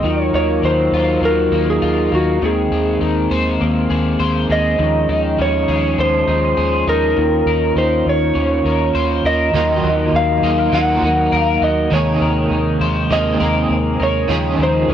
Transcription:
0.00 0.30 D#2 loud
0.00 2.39 D#3 medium
0.00 2.39 F#3 medium
0.00 0.10 G#3 medium
0.00 0.10 C4 soft
0.00 0.93 D#4 medium
0.00 2.39 D#4 medium
0.00 2.39 F4 medium
0.00 2.39 A#4 medium
0.00 0.22 D#5 medium
0.04 2.42 D#3 medium
0.22 0.35 C#5 medium
0.33 0.60 D#2 medium
0.33 1.52 A#3 medium
0.33 0.65 C#5 loud
0.63 0.89 D#2 loud
0.63 1.22 F#3 medium
0.63 1.20 C5 loud
0.92 1.19 D#2 loud
0.92 1.81 F4 medium
1.22 1.48 D#2 loud
1.22 2.48 F#3 medium
1.22 1.70 A#4 loud
1.52 1.78 D#2 loud
1.52 2.11 A#3 medium
1.70 2.14 G#4 medium
1.82 2.09 D#2 loud
1.82 2.47 F4 medium
2.12 2.38 D#2 loud
2.12 2.75 A#3 medium
2.12 2.44 F#4 medium
2.42 2.68 D#2 loud
2.42 4.77 D#3 medium
2.42 7.13 G#3 medium
2.42 4.77 A#3 medium
2.42 4.77 C4 medium
2.42 2.99 G#4 medium
2.71 2.97 D#2 loud
2.71 3.90 G#4 medium
3.01 3.27 D#2 loud
3.01 4.85 D#4 medium
3.31 3.57 D#2 loud
3.31 4.18 C5 medium
3.61 3.87 D#2 loud
3.61 4.85 A#3 medium
3.90 4.16 D#2 loud
3.90 4.50 G#4 medium
4.20 4.46 D#2 loud
4.20 4.85 C5 medium
4.50 4.76 D#2 loud
4.50 5.68 G#4 medium
4.50 5.41 D#5 loud
4.79 5.05 D#2 loud
4.79 7.16 D#3 medium
4.79 7.15 F3 medium
4.79 9.50 C#4 medium
5.09 5.35 D#2 loud
5.09 6.26 D#4 medium
5.38 5.65 D#2 loud
5.38 7.80 C#4 medium
5.38 6.00 C#5 medium
5.68 5.95 D#2 loud
5.68 6.56 G#4 medium
5.98 6.24 D#2 loud
5.98 7.80 F3 medium
5.98 6.84 C5 loud
6.27 6.54 D#2 loud
6.27 6.86 D#4 medium
6.57 6.84 D#2 loud
6.57 7.23 G#4 medium
6.87 7.13 D#2 loud
6.87 7.23 D#4 medium
6.87 7.78 A#4 medium
7.17 7.43 D#2 loud
7.17 9.54 D#3 medium
7.17 11.88 D#3 medium
7.17 9.52 A#3 medium
7.17 9.52 F4 medium
7.46 7.72 D#2 loud
7.46 8.65 A#4 medium
7.76 8.02 D#2 loud
7.76 9.83 D#4 medium
7.76 8.08 C5 loud
8.06 8.32 D#2 loud
8.06 9.26 C#5 medium
8.35 8.62 D#2 loud
8.35 9.60 C#4 medium
8.65 8.91 D#2 loud
8.65 9.25 A#4 medium
8.95 9.21 D#2 medium
8.95 9.60 C5 medium
9.24 9.51 D#2 loud
9.24 10.43 A#4 medium
9.24 10.16 D#5 loud
9.53 9.80 D#2 loud
9.53 10.46 D#3 medium
9.53 11.91 D#3 medium
9.53 11.89 F#3 medium
9.53 10.44 F#3 medium
9.53 10.46 A#3 medium
9.53 11.90 D#4 medium
9.53 10.45 D#4 medium
9.53 10.42 F4 loud
9.53 11.90 A#4 medium
9.84 10.10 D#2 loud
9.84 11.02 F#4 medium
10.13 10.39 D#2 loud
10.13 12.84 A#3 medium
10.13 10.74 F5 loud
10.43 10.69 D#2 loud
10.43 10.73 A#3 soft
10.43 10.73 D#4 soft
10.43 10.73 F4 medium
10.43 10.58 G#4 medium
10.58 11.31 A#4 medium
10.72 10.99 D#2 loud
10.72 11.02 D#3 medium
10.72 11.03 F#3 medium
10.72 11.03 A#3 medium
10.72 11.03 D#4 medium
10.72 11.04 F4 loud
10.72 11.37 F#5 loud
11.02 11.29 D#2 loud
11.02 11.93 A#3 soft
11.02 13.11 D#4 soft
11.02 11.61 F#4 medium
11.32 11.59 D#2 loud
11.32 12.21 A#4 medium
11.37 11.66 F5 loud
11.62 11.88 D#2 loud
11.62 11.98 F#4 medium
11.62 11.94 D#5 loud
11.90 12.18 D#2 loud
11.90 14.27 C3 medium
11.90 13.09 D#3 medium
11.90 14.28 D#3 medium
11.90 14.94 G#3 medium
11.90 13.10 G#3 medium
11.90 14.27 A#3 medium
11.90 13.10 A#3 medium
11.90 13.15 C#5 medium
11.95 13.12 G#4 medium
12.21 12.48 D#2 loud
12.21 13.39 A#4 medium
12.51 12.77 D#2 loud
12.51 14.36 D#4 medium
12.81 13.07 D#2 loud
12.81 13.70 C5 medium
13.10 13.37 D#2 loud
13.10 13.40 D#3 medium
13.10 13.41 G#3 medium
13.10 14.36 A#3 medium
13.10 13.41 A#3 medium
13.10 13.40 C4 medium
13.10 13.38 G#4 medium
13.10 13.67 D#5 medium
13.39 13.67 D#2 loud
13.39 14.29 A#3 soft
13.39 14.29 C4 medium
13.39 14.30 G#4 medium
13.39 13.98 A#4 medium
13.70 13.96 D#2 loud
14.00 14.26 D#2 loud
14.00 14.35 A#4 medium
14.00 14.63 C#5 loud
14.28 14.55 D#2 loud
14.28 14.94 C#3 medium
14.28 14.94 D#3 medium
14.28 14.94 F3 medium
14.28 14.94 C#4 medium
14.28 14.94 F4 medium
14.28 14.94 G#4 loud
14.59 14.85 D#2 loud
14.59 14.94 D#4 medium
14.63 14.92 C5 medium
14.89 14.94 D#2 loud
14.89 14.94 C#4 medium

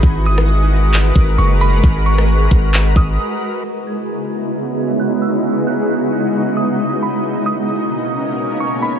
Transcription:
0.00 1.12 G#1 loud
0.00 3.60 G#3 medium
0.00 3.60 F#4 medium
0.00 3.60 A#4 medium
0.00 3.60 B4 medium
0.00 kick loud
0.00 closed hi-hat medium
0.26 1.35 D#6 medium
0.26 closed hi-hat medium
0.38 cross-stick loud
0.48 closed hi-hat medium
0.94 clap loud
0.94 closed hi-hat medium
1.16 1.37 G#1 loud
1.16 kick loud
1.38 1.82 F#1 loud
1.38 1.60 C#6 medium
1.38 closed hi-hat medium
1.61 1.83 B5 loud
1.61 closed hi-hat medium
1.84 2.49 G#1 loud
1.84 kick loud
1.84 closed hi-hat medium
2.06 2.92 C#6 medium
2.06 closed hi-hat medium
2.14 closed hi-hat medium
2.18 cross-stick loud
2.18 closed hi-hat soft
2.29 closed hi-hat medium
2.51 2.95 G#1 loud
2.51 kick loud
2.74 clap loud
2.74 closed hi-hat medium
2.96 3.18 G#1 loud
2.96 3.18 D#6 medium
2.96 kick loud
3.64 7.21 C#3 medium
3.64 7.21 G#3 medium
3.64 7.21 B3 medium
3.64 8.99 D#4 medium
3.64 7.21 E4 medium
3.64 7.21 F#4 medium
3.87 4.96 G#6 medium
5.00 5.21 F#6 medium
5.22 5.43 E6 medium
5.67 6.53 F#6 medium
6.57 6.99 D#6 medium
7.03 7.24 B5 medium
7.25 8.99 B2 medium
7.25 8.99 A#3 medium
7.25 8.99 C#4 medium
7.46 8.56 D#6 medium
8.60 8.82 C#6 medium
8.82 8.99 B5 medium

